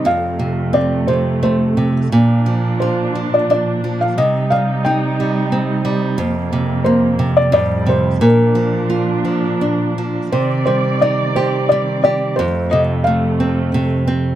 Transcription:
<<
  \new Staff \with { instrumentName = "Felt piano" } { \time 3/4 \key bes \major \tempo 4 = 88 f''4 d''8 c''8 c''8. r16 | r4 c''8. d''16 d''8. f''16 | ees''8 f''8 g''4 r4 | r4 c''8. d''16 d''8 c''8 |
bes'2~ bes'8 r8 | c''8 c''8 d''8 c''8 d''8 d''8 | c''8 ees''8 f''4 r4 | }
  \new Staff \with { instrumentName = "Nylon-string guitar" } { \clef bass \time 3/4 \key bes \major f,8 c8 c'8 c8 a8 c8 | bes,8 f8 f'8 f8 d'8 f8 | c8 g8 ees'8 g8 c'8 g8 | f,8 c8 bes8 c8 f,8 c8 |
bes,8 f8 f'8 f8 d'8 f8 | c8 g8 ees'8 g'8 g8 g'8 | f,8 c8 a8 c'8 c8 c'8 | }
  \new Staff \with { instrumentName = "String section" } { \clef bass \time 3/4 \key bes \major << { <f, a>2. | <bes, d'>2. | <c ees'>2. | <f, bes>2 <a, g>4 |
<bes, d'>2. | <ees d''>2. | <f, a>2. | } \\ { c2. | f2. | g2. | r2 f4~ |
f2. | c'2. | c2. | } >> }
>>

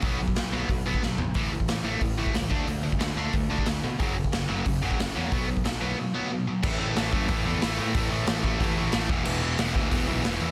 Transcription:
<<
  \new Staff \with { instrumentName = "Distorted electric guitar" } { \clef bass \time 4/4 \key a \major \tempo 4 = 182 <b, fis b>8 <b, fis>8 <b, fis>8 <b, fis b>8 <b, fis>8 <b, fis b>8 <b, fis>8 <b, fis>8 | <a, e a>8 <a, e>8 <a, e>8 <a, e a>8 <a, e>8 <a, e a>8 <a, e>8 <d a d'>8 | <d a>8 <d a>8 <d a>8 <d a d'>8 <d a>8 <d a d'>8 <d a>8 <d a>8 | <fis, cis fis>8 <fis, cis>8 <fis, cis>8 <fis, cis fis>8 <fis, cis>8 <fis, cis fis>8 <fis, cis>8 <fis, cis fis>8 |
<b, fis b>8 <b, fis>8 <b, fis>8 <b, fis b>8 <b, fis>8 <b, fis b>8 <b, fis>8 <b, fis>8 | <a, e a>8 <a, e a>8 <a, e a>8 <a, e a>8 <a, e a>8 <a, e a>8 <a, e a>8 <a, e a>8 | <a, e a>8 <a, e a>8 <a, e a>8 <a, e a>8 <a, e a>8 <a, e a>8 <a, e a>8 <e, b, e>8 | <e, b, e>8 <e, b, e>8 <e, b, e>8 <e, b, e>8 <e, b, e>8 <e, b, e>8 <e, b, e>8 <e, b, e>8 | }
  \new Staff \with { instrumentName = "Picked electric bass" } { \clef bass \time 4/4 \key a \major b,,4 b,,8 b,,8 b,,8 b,,8 b,,8 gis,,8 | a,,4 a,,8 a,,8 a,,8 a,,8 cis,8 d,8 | d,4 d,8 d,8 d,8 d,8 d,8 b,8 | fis,,4 fis,,8 fis,,8 fis,,8 fis,,8 fis,,8 e,8 |
b,,4 b,,8 b,,8 r2 | a,,4 a,,8 fis,8 a,,8 e,8 a,,8 a,8 | a,,4 a,,8 a,,8 a,,4 a,,8 e,,8 | e,,4 e,,8 d,8 e,,8 b,,8 e,,8 e,8 | }
  \new DrumStaff \with { instrumentName = "Drums" } \drummode { \time 4/4 <hho bd>8. bd16 <hho sn>4 <hho bd>8. bd16 sn8 tomfh8 | <hho bd>8. bd16 <hho sn>4 <hho bd>8. bd16 <hho sn>8 bd8 | hho8. bd16 <hho sn>4 <hho bd>8. bd16 <hho sn>4 | <hho bd>8. bd16 <hho sn>4 <hho bd>8. bd16 <hho sn>4 |
<hho bd>8. bd16 <hho sn>4 r4 r4 | <cymc bd>4 <hho sn>8 bd8 <hho bd>4 <hho sn>4 | <hho bd>4 <hho sn>8 bd8 <hho bd>4 <hho sn>8 bd8 | cymc4 <hho sn>8 bd8 <hho bd>4 <hho sn>4 | }
>>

